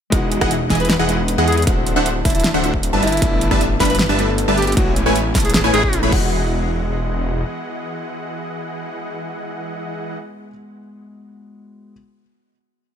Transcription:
0.10 E1 E3 G#3 B3 D#4 E4 G#4 D#5 F#5, kick, closed hi-hat
0.14 F#4
0.32 closed hi-hat
0.41 E1 E3 E4 G#4 D#5 F#5, kick, cross-stick
0.51 closed hi-hat
0.70 E1 E3 E4 G#4 D#5 G#5, kick, snare, open hi-hat
0.75 closed hi-hat
0.80 B4, closed hi-hat
0.85 closed hi-hat
0.90 B4, snare, closed hi-hat
0.99 E1 E3 E4 G#4 D#5 F#5
1.07 G#3 B3 D#4 B4, closed hi-hat
1.28 closed hi-hat
1.38 E2 E3 E4 G#4 D#5 F#5
1.48 G#4, closed hi-hat
1.52 closed hi-hat
1.57 G#4, closed hi-hat
1.62 A3, closed hi-hat
1.66 D1 D3 C4 D4 E4 F#4 C5 E5 F#5, kick, closed hi-hat
1.87 closed hi-hat
1.96 D1 D3 D4 C5 E5 F#5
2.06 closed hi-hat
2.25 D1 D3 D4 E4 C5 E5 A5, kick, open hi-hat
2.30 closed hi-hat
2.35 E4, closed hi-hat
2.40 closed hi-hat
2.44 snare, closed hi-hat
2.54 D1 D3 D4 C5 E5 F#5
2.63 A3 C4 E4 F#4, closed hi-hat
2.74 kick
2.83 closed hi-hat
2.93 G1 G3 D4 B4 E5 A5
3.02 E4, closed hi-hat
3.07 closed hi-hat
3.12 closed hi-hat
3.17 A3, closed hi-hat
3.21 G1 G3 B3 D4 E4 B4 E5 A5, kick, closed hi-hat
3.41 closed hi-hat
3.51 G1 G3 D4 B4 E5 A5, kick, cross-stick
3.61 closed hi-hat
3.80 G1 G3 D4 B4 E5 B5, kick, snare, open hi-hat
3.85 closed hi-hat
3.90 B4, closed hi-hat
3.95 closed hi-hat
3.99 B4, snare, closed hi-hat
4.09 G1 G3 D4 B4 E5 A5
4.17 A3 B3 D4 A4, closed hi-hat
4.38 closed hi-hat
4.48 G1 G3 D4 B4 E5 A5
4.57 G4, closed hi-hat
4.62 closed hi-hat
4.67 G4, closed hi-hat
4.72 G#3 B3, closed hi-hat
4.77 A1 A3 C#4 E4 F#4 B4 C#5 G#5, kick, closed hi-hat
4.96 closed hi-hat
5.06 A1 A3 E4 B4 C#5 G#5
5.16 closed hi-hat
5.35 A1 A3 E4 B4 C#5 A5, kick, snare, open hi-hat
5.40 closed hi-hat
5.45 G#4, closed hi-hat
5.50 closed hi-hat
5.54 G#4, snare, closed hi-hat
5.64 A1 A3 E4 B4 C#5 G#5
5.74 A1 A3 E4 G#4 B4 C#5 G#5, closed hi-hat
5.83 kick
5.93 closed hi-hat
6.02 A1 G#3 A3 B3 C#4 E4 B4 C#5 B5
6.10 E1 E3 G#3 B3 E4 G#4 D#5 F#5, kick, crash
6.16 F#4

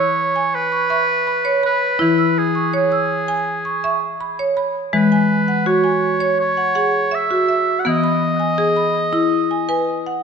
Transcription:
Already playing: E3 C#5 C#6
0.00 E6
0.36 G#5
0.55 B4
0.72 C#6
0.90 E5 C#6
1.27 B5
1.45 C#5
1.63 B4 B5
1.99 E3 E4
2.18 E6
2.38 G#4
2.55 C#6
2.73 G#4 C#5
2.92 E6
3.28 G#5
3.65 C#6
3.84 E5 C#6
4.21 B5
4.39 C#5
4.57 B5
4.93 E3 G#3 B4
5.12 G#5
5.48 F#5
5.66 F#4 C#5
5.84 G#5
6.20 C#5
6.40 C#5
6.57 F#5
6.75 G#4 F#5
7.11 E5
7.31 F#4
7.49 E5
7.79 F#5
7.85 E3 B3 D#5
8.04 B5
8.40 G#5
8.58 G#4
8.76 B5
9.13 E4
9.51 G#5
9.69 B4 G#5
10.06 F#5

